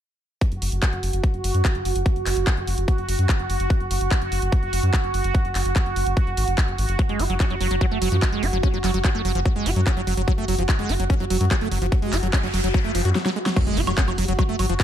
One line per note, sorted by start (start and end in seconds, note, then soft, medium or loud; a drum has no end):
0.41 13.15 F#4 medium
0.41 kick loud
0.41 closed hi-hat medium
0.52 0.59 F#1 medium
0.52 closed hi-hat soft
0.62 0.69 F#1 loud
0.62 open hi-hat loud
0.72 0.79 F#1 loud
0.72 closed hi-hat medium
0.82 kick loud
0.82 clap loud
0.82 closed hi-hat soft
0.93 1.00 F#1 medium
0.93 closed hi-hat soft
1.03 1.10 F#1 loud
1.03 open hi-hat medium
1.13 1.21 F#1 medium
1.13 closed hi-hat medium
1.24 kick loud
1.24 closed hi-hat medium
1.34 1.41 F#1 medium
1.34 closed hi-hat soft
1.44 1.51 F#1 loud
1.44 open hi-hat loud
1.54 1.62 F#2 medium
1.54 closed hi-hat medium
1.65 kick loud
1.65 clap loud
1.65 closed hi-hat medium
1.75 1.82 F#1 medium
1.75 closed hi-hat soft
1.85 1.93 F#1 medium
1.85 open hi-hat medium
1.96 2.03 F#1 medium
1.96 closed hi-hat medium
2.06 kick loud
2.06 closed hi-hat medium
2.16 2.23 F#1 medium
2.16 closed hi-hat soft
2.26 2.34 F#1 loud
2.26 clap medium
2.26 open hi-hat loud
2.37 2.44 F#1 loud
2.37 closed hi-hat medium
2.47 kick loud
2.47 clap loud
2.47 closed hi-hat soft
2.57 2.64 F#1 medium
2.57 closed hi-hat soft
2.67 2.75 F#1 loud
2.67 open hi-hat medium
2.78 2.85 F#1 loud
2.78 closed hi-hat medium
2.88 kick loud
2.88 closed hi-hat medium
2.98 3.06 F#1 medium
2.98 closed hi-hat soft
3.09 3.16 F#1 medium
3.09 open hi-hat loud
3.19 3.26 F#2 medium
3.19 closed hi-hat medium
3.29 kick loud
3.29 clap loud
3.29 closed hi-hat medium
3.39 3.47 F#1 medium
3.39 closed hi-hat soft
3.50 3.57 F#1 medium
3.50 open hi-hat medium
3.60 3.67 F#1 medium
3.60 closed hi-hat medium
3.70 kick loud
3.70 closed hi-hat soft
3.80 3.88 F#1 medium
3.80 closed hi-hat soft
3.91 3.98 F#1 loud
3.91 open hi-hat loud
4.01 4.08 F#1 medium
4.01 closed hi-hat soft
4.11 kick loud
4.11 clap loud
4.11 closed hi-hat soft
4.22 4.29 F#1 medium
4.22 closed hi-hat soft
4.32 4.39 F#1 loud
4.32 open hi-hat medium
4.42 4.49 F#1 medium
4.42 closed hi-hat medium
4.52 kick loud
4.52 closed hi-hat medium
4.63 4.70 F#1 medium
4.63 closed hi-hat soft
4.73 4.80 F#1 loud
4.73 open hi-hat loud
4.83 4.90 F#2 medium
4.83 closed hi-hat soft
4.93 kick loud
4.93 clap loud
4.93 closed hi-hat medium
5.04 5.11 F#1 medium
5.04 closed hi-hat soft
5.14 5.21 F#1 medium
5.14 open hi-hat medium
5.24 5.32 F#1 medium
5.24 closed hi-hat soft
5.35 kick loud
5.35 closed hi-hat soft
5.45 5.52 F#1 medium
5.45 closed hi-hat soft
5.55 5.62 F#1 loud
5.55 clap medium
5.55 open hi-hat loud
5.65 5.73 F#1 medium
5.65 closed hi-hat soft
5.76 kick loud
5.76 clap loud
5.76 closed hi-hat soft
5.86 5.93 F#1 medium
5.86 closed hi-hat soft
5.96 6.03 F#1 loud
5.96 open hi-hat medium
6.06 6.14 F#1 loud
6.06 closed hi-hat soft
6.17 kick loud
6.17 closed hi-hat soft
6.27 6.34 F#1 medium
6.27 closed hi-hat soft
6.37 6.45 G#1 loud
6.37 open hi-hat loud
6.48 6.55 F#1 medium
6.48 closed hi-hat soft
6.58 kick loud
6.58 clap loud
6.58 closed hi-hat medium
6.68 6.75 F#1 medium
6.68 closed hi-hat soft
6.78 6.86 G#1 medium
6.78 open hi-hat loud
6.89 6.96 F#1 medium
6.89 closed hi-hat medium
6.99 7.02 F#3 medium
6.99 kick loud
6.99 closed hi-hat soft
7.09 7.16 F#1 medium
7.09 7.21 G#3 medium
7.09 closed hi-hat soft
7.19 7.27 F#1 loud
7.19 7.24 F#4 medium
7.19 open hi-hat loud
7.30 7.37 F#1 medium
7.30 7.34 F#3 medium
7.30 closed hi-hat soft
7.40 7.45 C#4 medium
7.40 kick loud
7.40 clap loud
7.40 closed hi-hat soft
7.50 7.58 F#1 medium
7.50 7.55 F#3 medium
7.50 closed hi-hat soft
7.61 7.68 F#1 loud
7.61 7.68 F#3 medium
7.61 open hi-hat medium
7.71 7.78 F#1 medium
7.71 7.76 F#3 medium
7.71 closed hi-hat medium
7.81 7.86 F#3 loud
7.81 kick loud
7.81 closed hi-hat soft
7.91 7.99 F#1 medium
7.91 7.98 A3 medium
7.91 closed hi-hat soft
8.02 8.09 F#1 loud
8.02 8.09 F#3 medium
8.02 open hi-hat loud
8.12 8.19 F#2 medium
8.12 8.17 F3 medium
8.12 closed hi-hat medium
8.22 8.25 F#3 medium
8.22 kick loud
8.22 clap loud
8.22 closed hi-hat soft
8.32 8.40 F#1 medium
8.32 8.44 G#3 medium
8.32 closed hi-hat soft
8.43 8.50 F#1 loud
8.43 8.47 F#4 medium
8.43 open hi-hat medium
8.53 8.60 F#1 loud
8.53 8.58 F#3 medium
8.53 closed hi-hat soft
8.63 8.68 C#4 medium
8.63 kick loud
8.63 closed hi-hat medium
8.74 8.81 F#1 medium
8.74 8.78 F#3 medium
8.74 closed hi-hat soft
8.84 8.91 F#1 loud
8.84 8.91 F#3 medium
8.84 clap medium
8.84 open hi-hat loud
8.94 9.01 F#1 medium
8.94 8.99 F#3 medium
8.94 closed hi-hat medium
9.04 9.09 F#3 loud
9.04 kick loud
9.04 clap loud
9.04 closed hi-hat medium
9.15 9.22 F#1 medium
9.15 9.22 A3 medium
9.15 closed hi-hat soft
9.25 9.32 F#1 loud
9.25 9.32 F#3 medium
9.25 open hi-hat medium
9.35 9.42 F#1 loud
9.35 9.40 F3 medium
9.35 closed hi-hat medium
9.46 9.48 F#3 medium
9.46 kick loud
9.46 closed hi-hat soft
9.56 9.63 F#1 medium
9.56 9.68 G#3 medium
9.56 closed hi-hat soft
9.66 9.73 F#1 loud
9.66 9.71 F#4 medium
9.66 open hi-hat loud
9.76 9.84 F#2 medium
9.76 9.81 F#3 medium
9.76 closed hi-hat soft
9.87 9.91 C#4 medium
9.87 kick loud
9.87 clap loud
9.87 closed hi-hat medium
9.97 10.04 F#1 medium
9.97 10.02 F#3 medium
9.97 closed hi-hat soft
10.07 10.14 F#1 medium
10.07 10.14 F#3 medium
10.07 open hi-hat medium
10.17 10.25 F#1 medium
10.17 10.22 F#3 medium
10.17 closed hi-hat medium
10.28 10.32 F#3 loud
10.28 kick loud
10.28 closed hi-hat medium
10.38 10.45 F#1 medium
10.38 10.45 A3 medium
10.38 closed hi-hat soft
10.48 10.56 F#1 loud
10.48 10.55 F#3 medium
10.48 open hi-hat medium
10.59 10.66 F#1 loud
10.59 10.63 F3 medium
10.59 closed hi-hat medium
10.69 10.72 F#3 medium
10.69 kick loud
10.69 clap loud
10.69 closed hi-hat medium
10.79 10.86 F#1 medium
10.79 10.91 G#3 medium
10.79 closed hi-hat soft
10.89 10.97 F#1 loud
10.89 10.94 F#4 medium
10.89 open hi-hat medium
11.00 11.07 F#1 medium
11.00 11.04 F#3 medium
11.00 closed hi-hat medium
11.10 11.15 C#4 medium
11.10 kick loud
11.10 closed hi-hat medium
11.20 11.27 F#1 medium
11.20 11.25 F#3 medium
11.20 closed hi-hat soft
11.30 11.38 F#1 loud
11.30 11.37 F#3 medium
11.30 open hi-hat loud
11.41 11.48 F#2 medium
11.41 11.45 F#3 medium
11.41 closed hi-hat medium
11.51 11.56 F#3 loud
11.51 kick loud
11.51 clap loud
11.51 closed hi-hat medium
11.61 11.69 F#1 medium
11.61 11.68 A3 medium
11.61 closed hi-hat soft
11.72 11.79 F#1 loud
11.72 11.79 F#3 medium
11.72 open hi-hat medium
11.82 11.89 F#1 medium
11.82 11.87 F3 medium
11.82 closed hi-hat medium
11.92 11.95 F#3 medium
11.92 kick loud
11.92 closed hi-hat medium
11.92 noise sweep medium
12.02 12.10 F#1 medium
12.02 12.14 G#3 medium
12.02 closed hi-hat soft
12.13 12.20 F#1 loud
12.13 12.17 F#4 medium
12.13 clap medium
12.13 open hi-hat loud
12.23 12.30 F#1 loud
12.23 12.28 F#3 medium
12.23 closed hi-hat medium
12.33 12.38 C#4 medium
12.33 kick loud
12.33 clap loud
12.33 closed hi-hat medium
12.43 12.51 F#1 medium
12.43 12.48 F#3 medium
12.43 closed hi-hat soft
12.54 12.61 F#1 loud
12.54 12.61 F#3 medium
12.54 open hi-hat medium
12.64 12.71 F#1 medium
12.64 12.69 F#3 medium
12.64 closed hi-hat medium
12.74 12.79 F#3 loud
12.74 kick loud
12.74 closed hi-hat medium
12.85 12.92 F#1 medium
12.85 12.92 A3 medium
12.85 closed hi-hat soft
12.95 13.02 F#1 loud
12.95 13.02 F3 medium
12.95 open hi-hat loud
13.05 13.12 F#2 medium
13.05 13.10 F#4 medium
13.05 closed hi-hat medium
13.15 13.18 F#3 medium
13.15 snare medium
13.26 13.30 F#3 loud
13.26 snare medium
13.36 13.39 G#3 medium
13.46 13.49 F#3 medium
13.46 snare medium
13.56 13.59 F#3 medium
13.56 14.84 F#4 medium
13.56 kick loud
13.56 closed hi-hat medium
13.56 crash loud
13.56 impact medium
13.56 high woodblock soft
13.67 13.74 F#1 medium
13.67 13.78 G#3 medium
13.67 closed hi-hat soft
13.77 13.84 F#1 loud
13.77 13.82 F#4 medium
13.77 open hi-hat loud
13.87 13.95 F#1 medium
13.87 13.92 F#3 medium
13.87 closed hi-hat medium
13.87 high woodblock medium
13.98 14.02 C#4 medium
13.98 kick loud
13.98 clap loud
13.98 closed hi-hat medium
14.08 14.15 F#1 medium
14.08 14.13 F#3 medium
14.08 closed hi-hat soft
14.08 high woodblock soft
14.18 14.25 F#1 loud
14.18 14.25 F#3 medium
14.18 open hi-hat medium
14.28 14.36 F#1 medium
14.28 14.33 F#3 medium
14.28 closed hi-hat medium
14.39 14.43 F#3 loud
14.39 kick loud
14.39 closed hi-hat medium
14.39 high woodblock medium
14.49 14.56 F#1 medium
14.49 14.56 A3 medium
14.49 closed hi-hat soft
14.59 14.66 G#1 medium
14.59 14.66 F#3 medium
14.59 open hi-hat loud
14.59 high woodblock soft
14.69 14.77 F#1 medium
14.69 14.74 F3 medium
14.69 closed hi-hat medium
14.80 14.83 F#3 medium
14.80 kick loud
14.80 clap loud
14.80 closed hi-hat medium